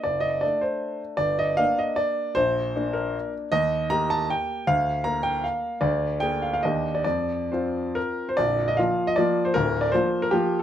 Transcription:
<<
  \new Staff \with { instrumentName = "Grand piano" } { \time 3/4 \key bes \major \tempo 4 = 155 d''8 ees''8 d''8 c''4 r8 | d''8 ees''8 f''8 ees''8 d''4 | c''4. bes'4 r8 | ees''4 bes''8 a''8 g''4 |
f''4 bes''8 g''8 f''4 | d''4 g''8 f''16 f''16 ees''8. d''16 | d''4 c''4 bes'8. c''16 | d''8. ees''16 f''8. ees''16 d''8. c''16 |
bes'8. d''16 c''8. bes'16 g'8. a'16 | }
  \new Staff \with { instrumentName = "Grand piano" } { \time 3/4 \key bes \major fis,,4 <a d'>2 | g,,4 <bes d'>2 | bes,,4 <bes d'>2 | ees,4 <bes g'>2 |
d,4 <bes bes'>2 | d,4 <bes aes'>4 <ees, bes d' g'>4 | f,4 <c' f'>2 | <bes,,, bes,,>4 <f bes f'>4 <f bes f'>4 |
<d,, d,>4 <f bes f'>4 <f bes f'>4 | }
>>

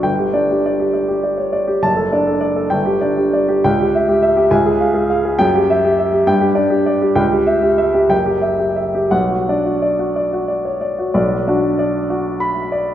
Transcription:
<<
  \new Staff \with { instrumentName = "Upright piano" } { \time 6/8 \key b \minor \tempo 4. = 66 << { g''8 r2 r8 | a''8 r4 g''8 r4 | g''8 r4 gis''8 r4 | g''8 r4 g''8 r4 |
g''8 r4 g''8 r4 | fis''8 r2 r8 | r2 b''4 | } \\ { r16 g'16 d''16 g'16 d''16 g'16 d''16 g'16 d''16 cis''16 d''16 g'16 | r16 a'16 d''16 a'16 d''16 a'16 r16 g'16 d''16 g'16 d''16 g'16 | r16 g'16 e''16 g'16 e''16 g'16 r16 gis'16 eis''16 gis'16 eis''16 gis'16 | r16 g'16 e''16 g'16 e''16 g'16 r16 g'16 d''16 g'16 d''16 g'16 |
r16 g'16 e''16 g'16 e''16 g'16 r16 g'16 e''16 g'16 e''16 g'16 | r16 fis'16 d''16 fis'16 d''16 fis'16 d''16 fis'16 d''16 cis''16 d''16 fis'16 | d''8 fis'8 d''8 fis'8. r16 d''8 | } >> }
  \new Staff \with { instrumentName = "Upright piano" } { \clef bass \time 6/8 \key b \minor g,,8 d'4 r4. | fis,,8 d'4 g,,8 d'4 | cis,4. cis,4. | fis,4. g,8 d'4 |
cis,4. fis,,4. | b,,8 d'4 r4. | b,,8 d'4 r4. | }
>>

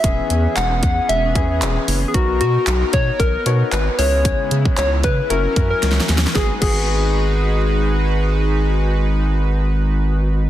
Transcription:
<<
  \new Staff \with { instrumentName = "Soft synth lead" } { \time 4/4 \key gis \minor \tempo 4 = 114 e''4 fis''4 e''4. r16. gis'32 | fis'8 fis'4 cis''8 ais'4 b'8 cis''8~ | cis''4 cis''8 b'8 ais'8. ais'8. r8 | gis'16 r16 gis'2.~ gis'8~ |
gis'1 | }
  \new Staff \with { instrumentName = "Grand piano" } { \time 4/4 \key gis \minor <b cis' e' gis'>4. r4 <b cis' e' gis'>4 r8 | <b dis' fis' ais'>4. r4 <b dis' fis' cis''>4 <cis' e' gis' b'>8~ | <cis' e' gis' b'>4 r4 <cis' e' fis' ais'>8 <cis' e' fis' ais'>4 r8 | <b fis' gis'>8 <b fis' gis'>2.~ <b fis' gis'>8~ |
<b fis' gis'>1 | }
  \new Staff \with { instrumentName = "Analog synth pad" } { \time 4/4 \key gis \minor cis'1 | r2. r8 <cis gis e'>8~ | <cis gis e'>2 <fis cis' ais'>2 | <fis' b'>1~ |
<fis' b'>1 | }
  \new Staff \with { instrumentName = "Analog synth bass" } { \clef bass \time 4/4 \key gis \minor e,,8 e,8 e,,8 e,8 e,,8 e,8 e,,8 fis,,8 | b,,8 b,8 b,,8 b,8 b,,8 b,8 gis,,8 cis,8~ | cis,8 cis8 cis,8 cis8 fis,,8 fis,8 cis,8 dis,8 | gis,,8 gis,,2.~ gis,,8~ |
gis,,1 | }
  \new DrumStaff \with { instrumentName = "Drums" } \drummode { \time 4/4 <hh bd>8 hh8 <hc hh>8 <hh bd>8 hh8 <hh bd>8 <hc hh>8 hho8 | <hh bd>8 hh8 <hc hh>8 <hh bd>8 <hh bd>8 hh8 <hc hh>8 hho8 | <hh bd>8 hh16 bd16 <hc hh>8 <hh bd>8 hh8 <hh bd>8 \tuplet 3/2 { <hh sn>16 sn16 sn16 <hh sn>16 sn16 sn16 } | <bd sn>8 <cymc bd>8 r4 r4 r4 |
r4 r4 r4 r4 | }
>>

